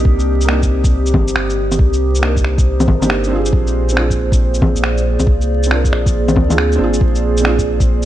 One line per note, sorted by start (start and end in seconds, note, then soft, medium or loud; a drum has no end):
0.00 0.43 A#3 medium
0.00 4.62 C4 medium
0.00 0.46 D4 medium
0.00 0.48 D#4 medium
0.00 0.49 G4 loud
0.00 3.53 G4 medium
0.00 8.05 C5 medium
0.00 3.53 D#6 medium
0.05 1.13 C2 loud
0.05 kick loud
0.19 shaker soft
0.41 2.17 A#3 medium
0.41 shaker medium
0.47 2.20 D4 medium
0.47 2.21 D#4 medium
0.47 finger snap loud
0.53 2.23 G4 medium
0.62 kick medium
0.62 shaker soft
0.84 kick loud
0.84 shaker medium
1.06 shaker soft
1.14 1.34 G1 medium
1.14 kick loud
1.14 low bongo medium
1.28 shaker medium
1.36 1.78 G1 medium
1.36 finger snap loud
1.50 shaker soft
1.72 low bongo soft
1.72 shaker medium
1.79 2.89 C2 medium
1.79 kick loud
1.93 shaker soft
2.15 2.97 A#3 medium
2.15 shaker medium
2.21 2.98 D4 medium
2.21 3.00 D#4 medium
2.21 finger snap loud
2.27 3.01 A#4 medium
2.36 kick medium
2.36 shaker soft
2.44 finger snap medium
2.58 kick loud
2.58 shaker medium
2.80 low bongo medium
2.80 shaker soft
2.88 3.52 G1 medium
2.88 kick loud
2.88 low bongo medium
3.00 3.28 A#3 medium
3.00 3.29 D4 medium
3.00 3.30 D#4 medium
3.00 low bongo soft
3.00 shaker medium
3.04 3.31 G4 medium
3.10 finger snap loud
3.24 3.91 C4 medium
3.24 shaker soft
3.30 3.94 D4 medium
3.30 3.96 F4 medium
3.35 3.97 G#4 loud
3.46 shaker medium
3.52 4.61 A#1 loud
3.52 8.05 A#3 medium
3.52 kick loud
3.63 8.05 G#4 medium
3.67 shaker soft
3.89 5.65 C4 medium
3.89 shaker medium
3.93 5.68 D4 medium
3.93 8.05 D5 medium
3.93 finger snap loud
3.98 5.69 F4 medium
3.98 5.71 G#4 medium
4.10 kick medium
4.10 shaker soft
4.32 kick loud
4.32 shaker soft
4.54 shaker soft
4.62 4.75 A#1 medium
4.62 kick loud
4.62 low bongo medium
4.76 5.17 A#1 medium
4.76 shaker soft
4.84 finger snap loud
4.98 shaker soft
5.19 5.91 C2 medium
5.19 low bongo soft
5.19 shaker medium
5.27 kick loud
5.41 shaker soft
5.63 6.45 C4 medium
5.63 shaker medium
5.69 6.46 D4 medium
5.69 6.48 F4 medium
5.69 finger snap loud
5.75 6.49 A#4 medium
5.84 kick medium
5.84 shaker soft
5.93 6.37 A#1 medium
5.93 finger snap medium
6.06 kick loud
6.06 shaker medium
6.28 low bongo medium
6.28 shaker soft
6.36 6.78 D2 medium
6.36 kick loud
6.36 low bongo medium
6.48 6.74 C4 medium
6.48 6.77 D4 medium
6.48 6.78 F4 medium
6.48 6.79 G#4 medium
6.48 low bongo soft
6.48 shaker medium
6.58 finger snap loud
6.72 7.39 C4 medium
6.72 shaker soft
6.78 7.00 G#1 medium
6.78 7.42 D4 medium
6.78 7.44 F4 medium
6.84 7.45 G#4 loud
6.94 shaker medium
7.01 8.05 A#1 medium
7.01 kick loud
7.15 shaker soft
7.37 8.05 C4 medium
7.37 shaker medium
7.43 8.05 D4 medium
7.43 8.05 F4 medium
7.43 finger snap loud
7.49 8.05 G#4 medium
7.58 kick medium
7.58 shaker soft
7.80 kick loud
7.80 shaker medium